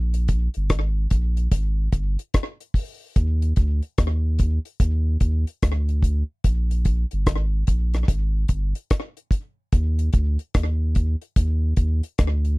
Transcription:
Already playing: A#1
0.14 closed hi-hat
0.28 kick, closed hi-hat
0.54 G1, closed hi-hat
0.70 G#1, kick, cross-stick, closed hi-hat
1.10 A#1, kick, closed hi-hat
1.37 closed hi-hat
1.52 G#1, kick, closed hi-hat
1.92 G1, kick, closed hi-hat
2.19 closed hi-hat
2.34 kick, cross-stick, closed hi-hat
2.60 closed hi-hat
2.74 kick, open hi-hat
3.16 D#2, kick, closed hi-hat
3.42 closed hi-hat
3.56 D2, kick, closed hi-hat
3.82 closed hi-hat
3.98 D#2, kick, cross-stick, closed hi-hat
4.39 kick, closed hi-hat
4.65 closed hi-hat
4.80 D#2, kick, closed hi-hat
5.20 D#2, kick, closed hi-hat
5.47 closed hi-hat
5.62 D2, kick, cross-stick, closed hi-hat
5.89 closed hi-hat
6.03 kick, closed hi-hat
6.44 A#1, kick, closed hi-hat
6.71 closed hi-hat
6.85 kick, closed hi-hat
7.11 G1, closed hi-hat
7.26 G#1, kick, cross-stick, closed hi-hat
7.67 A#1, kick, closed hi-hat
7.94 cross-stick, closed hi-hat
8.08 G#1, kick, closed hi-hat
8.48 G1, kick, closed hi-hat
8.75 closed hi-hat
8.90 kick, cross-stick, closed hi-hat
9.17 closed hi-hat
9.31 kick, closed hi-hat
9.72 D#2, kick, closed hi-hat
9.99 closed hi-hat
10.13 D2, kick, closed hi-hat
10.39 closed hi-hat
10.54 D#2, kick, cross-stick, closed hi-hat
10.95 kick, closed hi-hat
11.22 closed hi-hat
11.36 D#2, kick, closed hi-hat
11.76 D#2, kick, closed hi-hat
12.03 closed hi-hat
12.18 D2, kick, cross-stick, closed hi-hat
12.45 closed hi-hat

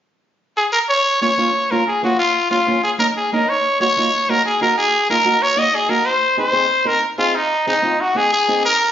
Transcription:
0.57 G#4
0.72 A#4
0.89 C#5
1.21 A#3 C#4 F4 C#5
1.37 A#3 C#4 F4
1.71 A#3 C#4 F4 A#4
1.87 G#4
2.03 A#3 C#4 F4 F#4
2.19 F4
2.50 A#3 C#4 F4
2.67 A#3 C#4 F4
2.83 G#4
2.98 A#3 C#4 D#4 A#4
3.17 G#4
3.32 A#3 C#4 D#4 A#4
3.49 C#5
3.80 A#3 D#4 F#4 C#5
3.96 A#3 D#4 F4
4.29 A#3 D#4 F#4 A#4
4.45 G#4
4.61 A#3 D#4 F#4 A#4
4.77 G#4
5.09 A#3 D#4 F4 A#4
5.24 A#3 D#4 F#4
5.42 C#5
5.56 A#3 D#4 F#4 D#5
5.75 G#4
5.89 A#3 D#4 F#4 A#4
6.05 C5
6.37 C4 D#4 G#4 C5
6.52 C4 D#4 G#4
6.85 C4 D#4 A#4
7.18 C4 D#4 F4 G#4
7.35 D#4
7.67 C4 D#4 G#4
7.82 C4 D#4 F4
8.01 F#4
8.15 C4 D#4 G#4
8.33 G#4
8.48 C4 D#4 G#4
8.65 A#4

